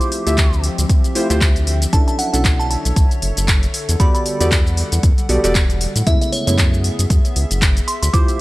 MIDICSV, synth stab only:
0, 0, Header, 1, 2, 480
1, 0, Start_track
1, 0, Key_signature, 2, "minor"
1, 0, Tempo, 517241
1, 1791, Time_signature, 4, 2, 24, 8
1, 7803, End_track
2, 0, Start_track
2, 0, Title_t, "Synth stab"
2, 0, Program_c, 0, 62
2, 0, Note_on_c, 0, 57, 93
2, 0, Note_on_c, 0, 64, 87
2, 0, Note_on_c, 0, 65, 88
2, 0, Note_on_c, 0, 67, 89
2, 0, Note_on_c, 0, 72, 103
2, 214, Note_off_c, 0, 57, 0
2, 214, Note_off_c, 0, 64, 0
2, 215, Note_off_c, 0, 65, 0
2, 216, Note_off_c, 0, 67, 0
2, 217, Note_off_c, 0, 72, 0
2, 244, Note_on_c, 0, 57, 89
2, 246, Note_on_c, 0, 64, 85
2, 247, Note_on_c, 0, 65, 84
2, 250, Note_on_c, 0, 67, 86
2, 252, Note_on_c, 0, 76, 102
2, 422, Note_off_c, 0, 57, 0
2, 423, Note_off_c, 0, 64, 0
2, 424, Note_off_c, 0, 65, 0
2, 425, Note_off_c, 0, 67, 0
2, 426, Note_off_c, 0, 76, 0
2, 1068, Note_on_c, 0, 57, 91
2, 1069, Note_on_c, 0, 64, 87
2, 1071, Note_on_c, 0, 65, 84
2, 1073, Note_on_c, 0, 67, 85
2, 1075, Note_on_c, 0, 72, 100
2, 1174, Note_off_c, 0, 57, 0
2, 1174, Note_off_c, 0, 64, 0
2, 1175, Note_off_c, 0, 65, 0
2, 1176, Note_off_c, 0, 67, 0
2, 1177, Note_off_c, 0, 72, 0
2, 1205, Note_on_c, 0, 57, 99
2, 1207, Note_on_c, 0, 64, 90
2, 1208, Note_on_c, 0, 65, 95
2, 1210, Note_on_c, 0, 67, 90
2, 1212, Note_on_c, 0, 72, 109
2, 1382, Note_off_c, 0, 57, 0
2, 1383, Note_off_c, 0, 64, 0
2, 1384, Note_off_c, 0, 65, 0
2, 1385, Note_off_c, 0, 67, 0
2, 1386, Note_off_c, 0, 72, 0
2, 1787, Note_on_c, 0, 54, 97
2, 1789, Note_on_c, 0, 61, 89
2, 1791, Note_on_c, 0, 62, 88
2, 1793, Note_on_c, 0, 64, 89
2, 1794, Note_on_c, 0, 69, 101
2, 2133, Note_off_c, 0, 54, 0
2, 2134, Note_off_c, 0, 61, 0
2, 2135, Note_off_c, 0, 62, 0
2, 2136, Note_off_c, 0, 64, 0
2, 2137, Note_off_c, 0, 69, 0
2, 2161, Note_on_c, 0, 54, 81
2, 2165, Note_on_c, 0, 61, 73
2, 2168, Note_on_c, 0, 62, 75
2, 2171, Note_on_c, 0, 64, 72
2, 2175, Note_on_c, 0, 69, 89
2, 3455, Note_off_c, 0, 54, 0
2, 3457, Note_off_c, 0, 61, 0
2, 3459, Note_off_c, 0, 62, 0
2, 3460, Note_off_c, 0, 64, 0
2, 3462, Note_off_c, 0, 69, 0
2, 3707, Note_on_c, 0, 59, 97
2, 3709, Note_on_c, 0, 66, 88
2, 3711, Note_on_c, 0, 67, 90
2, 3713, Note_on_c, 0, 69, 87
2, 3715, Note_on_c, 0, 74, 104
2, 4054, Note_off_c, 0, 59, 0
2, 4054, Note_off_c, 0, 66, 0
2, 4055, Note_off_c, 0, 67, 0
2, 4056, Note_off_c, 0, 69, 0
2, 4057, Note_off_c, 0, 74, 0
2, 4085, Note_on_c, 0, 59, 90
2, 4087, Note_on_c, 0, 66, 84
2, 4089, Note_on_c, 0, 67, 83
2, 4090, Note_on_c, 0, 69, 85
2, 4092, Note_on_c, 0, 74, 102
2, 4263, Note_off_c, 0, 59, 0
2, 4264, Note_off_c, 0, 66, 0
2, 4264, Note_off_c, 0, 67, 0
2, 4265, Note_off_c, 0, 69, 0
2, 4266, Note_off_c, 0, 74, 0
2, 4907, Note_on_c, 0, 59, 93
2, 4909, Note_on_c, 0, 66, 86
2, 4911, Note_on_c, 0, 67, 83
2, 4913, Note_on_c, 0, 69, 85
2, 4915, Note_on_c, 0, 74, 97
2, 5013, Note_off_c, 0, 59, 0
2, 5014, Note_off_c, 0, 66, 0
2, 5015, Note_off_c, 0, 67, 0
2, 5016, Note_off_c, 0, 69, 0
2, 5017, Note_off_c, 0, 74, 0
2, 5044, Note_on_c, 0, 59, 101
2, 5046, Note_on_c, 0, 66, 91
2, 5047, Note_on_c, 0, 67, 93
2, 5049, Note_on_c, 0, 69, 90
2, 5051, Note_on_c, 0, 74, 112
2, 5222, Note_off_c, 0, 59, 0
2, 5223, Note_off_c, 0, 66, 0
2, 5224, Note_off_c, 0, 67, 0
2, 5225, Note_off_c, 0, 69, 0
2, 5225, Note_off_c, 0, 74, 0
2, 5627, Note_on_c, 0, 49, 97
2, 5629, Note_on_c, 0, 56, 89
2, 5631, Note_on_c, 0, 57, 91
2, 5632, Note_on_c, 0, 59, 87
2, 5634, Note_on_c, 0, 64, 107
2, 5973, Note_off_c, 0, 49, 0
2, 5974, Note_off_c, 0, 56, 0
2, 5975, Note_off_c, 0, 57, 0
2, 5976, Note_off_c, 0, 59, 0
2, 5977, Note_off_c, 0, 64, 0
2, 6001, Note_on_c, 0, 49, 81
2, 6005, Note_on_c, 0, 56, 74
2, 6008, Note_on_c, 0, 57, 75
2, 6011, Note_on_c, 0, 59, 73
2, 6015, Note_on_c, 0, 64, 87
2, 7295, Note_off_c, 0, 49, 0
2, 7297, Note_off_c, 0, 56, 0
2, 7298, Note_off_c, 0, 57, 0
2, 7300, Note_off_c, 0, 59, 0
2, 7302, Note_off_c, 0, 64, 0
2, 7547, Note_on_c, 0, 57, 94
2, 7549, Note_on_c, 0, 64, 91
2, 7550, Note_on_c, 0, 65, 88
2, 7552, Note_on_c, 0, 67, 91
2, 7554, Note_on_c, 0, 72, 108
2, 7803, Note_off_c, 0, 57, 0
2, 7803, Note_off_c, 0, 64, 0
2, 7803, Note_off_c, 0, 65, 0
2, 7803, Note_off_c, 0, 67, 0
2, 7803, Note_off_c, 0, 72, 0
2, 7803, End_track
0, 0, End_of_file